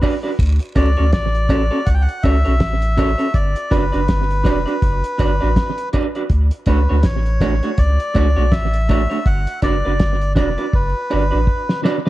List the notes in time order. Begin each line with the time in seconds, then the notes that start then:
0.01 D4 F#4 B4 D5, kick, open hi-hat, cowbell
0.23 D4 F#4 B4 D5
0.39 D2, kick, closed hi-hat, vibraslap
0.60 closed hi-hat
0.75 C#2 C#4 F#4 A4 C#5 D5, kick, closed hi-hat, cowbell
0.97 D2 C#4 F#4 A4 C#5
1.13 A1 D5, kick, snare, closed hi-hat
1.35 closed hi-hat
1.49 A1 C#4 F#4 A4 C#5, kick, closed hi-hat, cowbell
1.71 C#4 F#4 A4 C#5
1.86 C#2 F#5, kick, closed hi-hat
1.94 G5
2.01 F#5
2.09 closed hi-hat
2.23 C#2 C#4 F#4 A4 C#5 E5, kick, closed hi-hat, cowbell
2.45 B1 C#4 F#4 A4 C#5, closed hi-hat
2.60 A1, kick, snare, closed hi-hat
2.82 closed hi-hat
2.97 C#4 F#4 A4 C#5, kick, closed hi-hat, cowbell
3.18 C#4 F#4 A4 C#5, closed hi-hat
3.34 G1 D5, kick, closed hi-hat
3.56 closed hi-hat
3.71 F#1 D4 F#4 B4 D5, kick, closed hi-hat, cowbell
3.92 F#1 D4 F#4 B4 D5, closed hi-hat
4.08 G1, kick, snare, closed hi-hat
4.31 closed hi-hat
4.44 E1 D4 F#4 B4 D5, kick, snare, closed hi-hat, cowbell
4.66 D4 F#4 B4 D5, closed hi-hat
4.82 F#1, kick, closed hi-hat
5.04 closed hi-hat
5.18 G1 D4 F#4 B4 D5, kick, closed hi-hat, cowbell
5.41 A1 D4 F#4 B4 D5
5.56 kick, snare, closed hi-hat
5.78 closed hi-hat
5.93 D4 F#4 B4 D5, kick, closed hi-hat, cowbell
6.15 D4 F#4 B4 D5, closed hi-hat
6.30 D2, kick, closed hi-hat
6.51 closed hi-hat
6.66 C#2 A3 D4 F#4 B4 C#5, kick, closed hi-hat, cowbell
6.89 D2 A3 D4 F#4 C#5
7.03 A1 C#5, kick, snare, closed hi-hat
7.26 closed hi-hat
7.40 A1 A3 D4 F#4 C#5, kick, snare, closed hi-hat, cowbell
7.63 A3 D4 F#4 C#5, closed hi-hat
7.78 C#2 D5, kick, closed hi-hat
8.00 closed hi-hat
8.14 C#2 A3 D4 F#4 C#5, kick, closed hi-hat, cowbell
8.36 B1 A3 D4 F#4 C#5
8.51 A1 E5, kick, snare, closed hi-hat
8.74 closed hi-hat
8.89 A3 D4 F#4 C#5, kick, closed hi-hat, cowbell
9.10 A3 D4 F#4 C#5, closed hi-hat
9.26 G1 F#5, kick, closed hi-hat
9.47 closed hi-hat
9.62 F#1 D4 F#4 B4 D5, kick, closed hi-hat, cowbell
9.85 F#1 D4 F#4 B4 D5
10.00 G1, kick, snare, closed hi-hat
10.21 closed hi-hat
10.35 E1 D4 F#4 B4 D5, kick, snare, closed hi-hat, cowbell
10.58 D4 F#4 B4 D5, closed hi-hat
10.73 F#1 B4, kick
11.10 G1 D4 F#4 B4 D5, cowbell
11.31 A1 D4 F#4 B4 D5
11.47 kick
11.69 snare
11.83 D4 F#4 B4 D5, snare, cowbell
12.06 B4 D5